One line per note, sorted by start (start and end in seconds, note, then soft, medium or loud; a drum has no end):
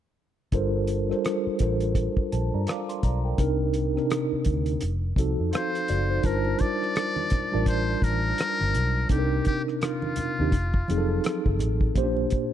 0.52 1.11 G1 medium
0.52 0.97 G3 medium
0.52 0.98 D4 medium
0.52 0.98 F4 medium
0.52 0.98 A4 medium
0.52 0.98 A#4 medium
0.52 0.99 C5 medium
0.52 kick medium
0.52 closed hi-hat medium
0.87 closed hi-hat soft
1.09 1.52 G3 medium
1.09 1.52 D4 medium
1.09 1.52 F4 medium
1.09 1.52 A4 medium
1.09 1.52 A#4 medium
1.09 1.53 C5 medium
1.09 cross-stick soft
1.25 cross-stick medium
1.25 closed hi-hat medium
1.47 muted fingered electric bass stroke soft
1.59 2.07 A1 medium
1.59 2.20 G3 medium
1.59 2.21 D4 soft
1.59 2.21 F4 medium
1.59 2.21 A4 soft
1.59 2.22 A#4 soft
1.59 2.22 C5 medium
1.59 kick medium
1.59 cross-stick soft
1.59 closed hi-hat medium
1.80 closed hi-hat soft
1.95 kick medium
1.95 closed hi-hat medium
2.17 kick medium
2.32 2.50 A#1 medium
2.32 2.53 C5 soft
2.32 2.52 A5 medium
2.32 closed hi-hat medium
2.54 2.65 G2 medium
2.54 2.67 D5 soft
2.54 2.67 A#5 soft
2.67 2.88 F5 soft
2.67 2.88 D6 medium
2.67 cross-stick medium
2.67 closed hi-hat medium
2.89 3.02 C6 medium
2.89 closed hi-hat soft
3.03 3.32 B1 medium
3.03 3.24 D5 soft
3.03 3.24 A#5 medium
3.03 kick medium
3.03 closed hi-hat medium
3.25 3.39 A#4 soft
3.25 3.58 G5 soft
3.37 3.97 C2 medium
3.37 3.83 C3 medium
3.37 3.83 C4 medium
3.37 3.84 D4 medium
3.37 3.84 D#4 medium
3.37 3.84 A#4 medium
3.37 kick medium
3.37 closed hi-hat medium
3.74 closed hi-hat soft
3.95 4.81 C3 medium
3.95 4.81 C4 medium
3.95 4.82 D4 medium
3.95 4.82 D#4 medium
3.95 4.83 A#4 medium
3.95 cross-stick soft
4.10 cross-stick medium
4.10 closed hi-hat medium
4.32 muted fingered electric bass stroke soft
4.45 4.75 D2 medium
4.45 kick medium
4.45 closed hi-hat medium
4.66 closed hi-hat soft
4.81 5.11 F1 loud
4.81 closed hi-hat medium
5.16 5.34 C2 medium
5.16 6.06 F3 medium
5.16 6.07 C4 medium
5.16 5.53 D#4 medium
5.16 5.53 F#4 medium
5.16 5.53 A4 medium
5.16 kick medium
5.16 closed hi-hat medium
5.40 5.51 F2 medium
5.53 5.87 A4 soft
5.53 6.27 C5 medium
5.53 5.87 F5 medium
5.53 cross-stick loud
5.53 closed hi-hat medium
5.75 closed hi-hat soft
5.88 6.18 F#1 medium
5.88 6.09 F#4 medium
5.88 6.09 D5 medium
5.88 closed hi-hat medium
6.10 6.44 D#4 soft
6.10 6.24 C5 medium
6.23 6.53 G1 medium
6.23 7.26 G3 medium
6.23 7.26 D4 medium
6.23 7.27 F4 medium
6.23 7.27 A#4 medium
6.23 6.63 A#4 medium
6.23 7.27 C5 medium
6.23 7.27 A5 medium
6.23 kick loud
6.23 closed hi-hat medium
6.23 muted conga soft
6.45 muted conga soft
6.59 7.68 D5 loud
6.59 kick medium
6.59 closed hi-hat medium
6.83 cross-stick soft
6.96 cross-stick loud
6.96 closed hi-hat medium
6.96 muted conga soft
7.16 high conga medium
7.30 muted fingered electric bass stroke soft
7.30 kick medium
7.30 cross-stick soft
7.30 closed hi-hat medium
7.30 low conga medium
7.52 7.94 A1 medium
7.52 8.66 G3 medium
7.52 8.67 D4 medium
7.52 8.67 F4 medium
7.52 8.68 A#4 medium
7.52 8.68 D5 medium
7.52 8.67 A5 medium
7.66 8.05 C5 medium
7.66 kick medium
7.66 closed hi-hat medium
7.66 muted conga soft
8.02 8.32 A1 medium
8.02 9.10 A#4 loud
8.02 kick medium
8.02 closed hi-hat medium
8.02 high conga medium
8.38 cross-stick loud
8.38 closed hi-hat medium
8.38 muted conga soft
8.61 8.72 G1 medium
8.61 muted conga soft
8.61 high conga medium
8.74 9.04 B1 medium
8.74 closed hi-hat medium
8.74 low conga soft
9.09 9.39 C2 medium
9.09 10.12 C3 medium
9.09 10.12 C4 medium
9.09 10.13 D4 medium
9.09 10.13 D#4 medium
9.09 9.44 G4 medium
9.09 9.19 A4 medium
9.09 kick medium
9.09 closed hi-hat medium
9.09 muted conga soft
9.18 10.17 A#4 medium
9.45 9.63 G4 medium
9.45 kick medium
9.45 closed hi-hat medium
9.68 cross-stick soft
9.81 11.56 F4 medium
9.81 cross-stick medium
9.81 closed hi-hat medium
9.81 muted conga soft
10.02 high conga medium
10.16 muted fingered electric bass stroke soft
10.16 closed hi-hat medium
10.16 low conga medium
10.38 10.51 D#2 medium
10.38 10.53 C3 medium
10.38 10.53 C4 medium
10.38 10.53 D4 medium
10.38 10.54 D#4 medium
10.38 10.54 G4 medium
10.52 10.82 F1 medium
10.52 kick medium
10.52 closed hi-hat medium
10.52 muted conga soft
10.73 kick medium
10.73 muted conga soft
10.88 11.18 F1 medium
10.88 11.78 F3 medium
10.88 11.79 F#3 medium
10.88 11.79 C4 medium
10.88 11.79 D#4 medium
10.88 10.98 G#4 medium
10.88 closed hi-hat medium
10.88 high conga medium
10.98 11.83 A4 medium
11.24 cross-stick medium
11.24 closed hi-hat medium
11.46 11.61 F#1 medium
11.46 kick medium
11.46 high conga medium
11.59 11.90 A1 medium
11.59 closed hi-hat medium
11.59 low conga soft
11.81 kick medium
11.95 12.25 A#1 medium
11.95 12.53 A#2 loud
11.95 12.53 A#3 medium
11.95 12.04 C#4 medium
11.95 12.53 G4 medium
11.95 12.53 C5 loud
11.95 kick medium
11.95 closed hi-hat medium
11.95 muted conga soft
12.03 12.53 D4 medium
12.17 muted conga soft
12.30 kick medium
12.30 closed hi-hat medium